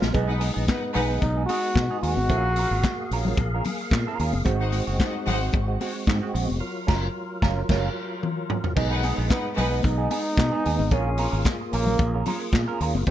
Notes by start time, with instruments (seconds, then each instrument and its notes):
Already playing: tonewheel organ F#3 F4 A#4
0.00 fingered electric bass A#1, muted clean electric guitar stroke, snare, high conga
0.13 fingered electric bass B1, tonewheel organ G#3 B3 D#4, clean electric guitar B3 D#4 G#4, kick, closed hi-hat, muted conga
0.27 string section D#4 B4 F#5
0.40 clean electric guitar B3 D#4 G#4, open hi-hat, muted conga
0.54 fingered electric bass A#1, clean electric guitar B3 D#4 G#4
0.68 trombone B3, string section D#4 B4 F#5, kick, snare, clap, closed hi-hat, high conga
0.82 muted clean electric guitar stroke
0.94 fingered electric bass B1, clean electric guitar B3 D#4 G#4, trombone B3, string section D#4 B4 F#5, open hi-hat, low conga
1.08 clean electric guitar B3 D#4 G#4
1.20 fingered electric bass B1, trombone D#4, kick, closed hi-hat, muted conga
1.37 clean electric guitar B3 D#4 G#4
1.46 clean electric guitar B3 D#4 G#4, trombone F#4, open hi-hat, muted conga
1.63 muted clean electric guitar stroke
1.75 fingered electric bass B2, muted clean electric guitar stroke, kick, snare, clap, closed hi-hat, high conga
1.91 clean electric guitar B3 D#4 G#4
2.01 fingered electric bass D#2, clean electric guitar B3 D#4 G#4, trombone F#4, open hi-hat
2.17 fingered electric bass G#1, muted clean electric guitar stroke, high conga
2.29 fingered electric bass A#1, tonewheel organ A#3 G#4 F5, clean electric guitar C#4 F4 A#4, kick, closed hi-hat, muted conga
2.56 clean electric guitar C#4 F4 A#4, open hi-hat, muted conga
2.71 fingered electric bass G#1, clean electric guitar C#4 F4 A#4
2.83 kick, snare, clap, closed hi-hat, high conga
3.01 muted clean electric guitar stroke
3.11 fingered electric bass A#1, clean electric guitar C#4 F4 A#4, open hi-hat
3.25 clean electric guitar C#4 F4 A#4, low conga
3.37 fingered electric bass A#1, muted clean electric guitar stroke, kick, closed hi-hat, muted conga
3.54 clean electric guitar C#4 F4 A#4
3.64 open hi-hat, muted conga, low conga
3.81 muted clean electric guitar stroke
3.91 fingered electric bass A#2, muted clean electric guitar stroke, kick, snare, clap, closed hi-hat, high conga
4.07 clean electric guitar C#4 F4 A#4
4.19 fingered electric bass D#2, clean electric guitar C#4 F4 A#4, open hi-hat
4.33 fingered electric bass F#1, high conga
4.45 fingered electric bass G#1, tonewheel organ G#3 C4 F#4, clean electric guitar G#3 C4 F#4, kick, closed hi-hat, muted conga
4.59 string section D#4 C5 F#5
4.72 clean electric guitar G#3 C4 F#4, open hi-hat, muted conga
4.87 fingered electric bass F#1, clean electric guitar G#3 C4 F#4
4.99 string section D#4 C5 F#5, kick, snare, clap, closed hi-hat, high conga
5.14 muted clean electric guitar stroke
5.26 fingered electric bass G#1, clean electric guitar G#3 C4 F#4, string section D#4 C5 F#5, open hi-hat, low conga
5.41 clean electric guitar G#3 C4 F#4
5.53 fingered electric bass G#1, kick, closed hi-hat, muted conga
5.68 clean electric guitar G#3 C4 F#4
5.81 clean electric guitar G#3 C4 F#4, open hi-hat, muted conga
5.96 muted clean electric guitar stroke
6.07 fingered electric bass G#2, kick, snare, clap, closed hi-hat, high conga
6.22 clean electric guitar G#3 C4 F#4
6.33 fingered electric bass A#1, clean electric guitar G#3 C4 F#4, open hi-hat
6.48 fingered electric bass F1, muted clean electric guitar stroke, high conga
6.60 tonewheel organ F#3 F4 A#4
6.87 fingered electric bass F#1, clean electric guitar C#4 F4 A#4, kick, snare, crash
7.42 fingered electric bass F#1, clean electric guitar C#4 F4 A#4, kick, snare
7.69 fingered electric bass F#1, clean electric guitar C#4 F4 A#4, kick, snare, crash
8.23 high tom
8.50 mid tom
8.64 floor tom
8.76 fingered electric bass B1, tonewheel organ G#3 B3 D#4, clean electric guitar B3 D#4 G#4, kick, crash, muted conga
8.90 string section D#4 B4 F#5
9.03 clean electric guitar B3 D#4 G#4, open hi-hat, muted conga
9.17 fingered electric bass A#1, clean electric guitar B3 D#4 G#4
9.29 trombone B3, string section D#4 B4 F#5, muted clean electric guitar stroke, kick, snare, clap, closed hi-hat, high conga
9.45 muted clean electric guitar stroke
9.56 fingered electric bass B1, clean electric guitar B3 D#4 G#4, trombone B3, string section D#4 B4 F#5, open hi-hat, low conga
9.71 clean electric guitar B3 D#4 G#4
9.83 fingered electric bass B1, trombone D#4, kick, closed hi-hat, muted conga
9.98 clean electric guitar B3 D#4 G#4
10.10 clean electric guitar B3 D#4 G#4, open hi-hat, muted conga
10.25 muted clean electric guitar stroke
10.37 fingered electric bass B2, muted clean electric guitar stroke, kick, snare, clap, closed hi-hat, high conga
10.52 clean electric guitar B3 D#4 G#4
10.65 fingered electric bass D#2, clean electric guitar B3 D#4 G#4, open hi-hat
10.79 fingered electric bass G#1, muted clean electric guitar stroke, high conga
10.91 fingered electric bass A#1, tonewheel organ A#3 F4 G#4, clean electric guitar C#4 F4 A#4, trombone C#4, kick, closed hi-hat, muted conga
11.18 clean electric guitar C#4 F4 A#4, open hi-hat, muted conga
11.32 fingered electric bass G#1, clean electric guitar C#4 F4 A#4
11.45 kick, snare, clap, closed hi-hat, high conga
11.61 muted clean electric guitar stroke
11.73 fingered electric bass A#1, trombone A#3, clean electric guitar C#4 F4 A#4, open hi-hat
11.86 clean electric guitar C#4 F4 A#4, low conga
11.99 fingered electric bass A#1, kick, closed hi-hat, muted conga
12.14 clean electric guitar C#4 F4 A#4
12.25 clean electric guitar C#4 F4 A#4, open hi-hat, muted conga, low conga
12.42 muted clean electric guitar stroke
12.53 fingered electric bass A#2, muted clean electric guitar stroke, kick, snare, clap, closed hi-hat, high conga
12.68 clean electric guitar C#4 F4 A#4
12.80 fingered electric bass D#2, clean electric guitar C#4 F4 A#4, open hi-hat
12.95 fingered electric bass F#1, muted clean electric guitar stroke, high conga
13.07 fingered electric bass G#1, tonewheel organ G#3 C4, kick, closed hi-hat